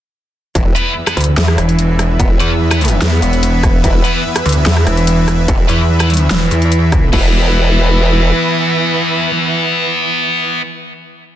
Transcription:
0.55 E1 E3 B3 B4 E5, kick, closed hi-hat
0.66 E2
0.75 E2 B3 E4 B4, closed hi-hat
0.96 E2
1.07 E2 B3 E4 B4, cross-stick, closed hi-hat
1.17 D2 D3, closed hi-hat
1.21 closed hi-hat
1.24 E2, closed hi-hat
1.37 E2 E3, snare, closed hi-hat
1.48 cross-stick
1.58 E1, cross-stick, closed hi-hat
1.69 closed hi-hat
1.79 closed hi-hat
1.99 cross-stick, closed hi-hat
2.19 E1 B3, kick, closed hi-hat
2.30 E3
2.40 E2 E3 B3 E4 B4, closed hi-hat
2.61 E3
2.71 E3 B3 E4 B4, cross-stick, closed hi-hat
2.81 A3, closed hi-hat
2.85 closed hi-hat
2.88 E3, closed hi-hat
3.02 E2 B3, snare, closed hi-hat
3.22 E1, closed hi-hat
3.33 closed hi-hat
3.43 closed hi-hat
3.63 kick, cross-stick, closed hi-hat
3.84 E1 E3, kick, closed hi-hat
3.95 E2
4.04 E2 B3 E4 B4, closed hi-hat
4.25 E2
4.36 E2, cross-stick, closed hi-hat
4.46 D2 D3, closed hi-hat
4.49 closed hi-hat
4.52 E2, closed hi-hat
4.66 E2 E3, snare, closed hi-hat
4.77 cross-stick
4.87 E1, cross-stick, closed hi-hat
4.97 closed hi-hat
5.07 closed hi-hat
5.28 cross-stick, closed hi-hat
5.48 E1 B3, kick, closed hi-hat
5.59 E3
5.69 E2 E3 B3 E4 B4, closed hi-hat
5.89 E3
6.00 E3 B3 E4 B4, cross-stick, closed hi-hat
6.10 D#2 G3, closed hi-hat
6.14 closed hi-hat
6.17 E3, closed hi-hat
6.31 E1 E3, snare, closed hi-hat
6.51 E2, closed hi-hat
6.62 closed hi-hat
6.72 closed hi-hat
6.92 kick, cross-stick, closed hi-hat
7.12 E1 E3 B3 E4 B4 E5, kick, crash

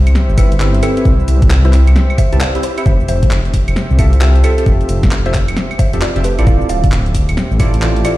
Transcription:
Already playing: G4 C5 E5
0.07 C2, closed hi-hat, cabasa, claves
0.15 snare, cabasa
0.29 G1, cabasa
0.38 C4 E4 G4 B4 E5, kick, open hi-hat, cabasa, claves
0.52 closed hi-hat, cabasa
0.60 C4 E4 G4 B4 E5, clap, cabasa
0.74 closed hi-hat, cabasa
0.83 C4 E4 G4 A4 B4 E5, open hi-hat, cabasa, claves
0.97 C4 E4 G4 B4 E5, closed hi-hat, cabasa
1.05 C2, kick, cabasa
1.20 cabasa
1.28 C2, open hi-hat, cabasa
1.42 kick, closed hi-hat, cabasa
1.51 clap, cabasa
1.65 C4 E4 G4 B4 C5 E5, closed hi-hat, cabasa
1.73 clap, open hi-hat, cabasa
1.87 C2, closed hi-hat, cabasa, claves
1.96 snare, cabasa
2.10 cabasa, claves
2.18 C5 E5, kick, open hi-hat, cabasa
2.32 C2 C4 E4 G4 B4 A5, closed hi-hat, cabasa
2.41 D5 F5, clap, cabasa
2.55 C4 E4 G4 B4 E5, closed hi-hat, cabasa
2.63 E4 C5, open hi-hat, cabasa
2.78 C4 E4 G4 B4 E5, closed hi-hat, cabasa, claves
2.86 F1 C5 E5, kick, cabasa
3.00 cabasa
3.08 F1 C5 E5, open hi-hat, cabasa
3.23 kick, closed hi-hat, cabasa
3.31 clap, cabasa
3.45 closed hi-hat, cabasa
3.54 kick, open hi-hat, cabasa
3.68 F1, closed hi-hat, cabasa, claves
3.76 snare, cabasa
3.90 C2, cabasa
3.99 C4 F4 G4 A4 E5, kick, open hi-hat, cabasa, claves
4.13 closed hi-hat, cabasa
4.21 C4 F4 G4 A4 E5, clap, cabasa
4.35 closed hi-hat, cabasa
4.44 C4 F4 G4 A4 C5 E5, open hi-hat, cabasa, claves
4.58 C4 F4 G4 A4 E5, closed hi-hat, cabasa
4.66 F1, kick, cabasa
4.81 closed hi-hat, cabasa
4.89 F1, open hi-hat, cabasa
5.03 kick, snare, closed hi-hat, cabasa
5.11 clap, cabasa
5.26 C4 F4 G4 A4 C5 E5, closed hi-hat, cabasa
5.34 kick, clap, open hi-hat, cabasa
5.48 F1, closed hi-hat, cabasa, claves
5.57 snare, cabasa
5.71 cabasa, claves
5.79 C5 E5, kick, open hi-hat, cabasa
5.93 F1 C4 F4 G4 A4 E5, closed hi-hat, cabasa
6.02 F4 D5, clap, cabasa
6.16 F1 C4 F4 G4 A4 E5, closed hi-hat, cabasa
6.24 F1 G4 B4, open hi-hat, cabasa
6.38 A1 C4 E4 F4 A4 D5, closed hi-hat, cabasa, claves
6.47 D1 G4 D5 F5, kick, cabasa
6.61 cabasa
6.69 D1 D5 F5, open hi-hat, cabasa
6.84 kick, closed hi-hat, cabasa
6.92 clap, cabasa
7.06 closed hi-hat, cabasa
7.15 kick, open hi-hat, cabasa
7.29 D1, closed hi-hat, cabasa, claves
7.37 snare, cabasa
7.51 A1, cabasa
7.60 C4 E4 F4 A4 D5, kick, open hi-hat, cabasa, claves
7.74 closed hi-hat, cabasa
7.82 C4 E4 F4 A4 D5, clap, cabasa
7.96 closed hi-hat, cabasa
8.04 C4 E4 F4 A4 D5, open hi-hat, cabasa, claves

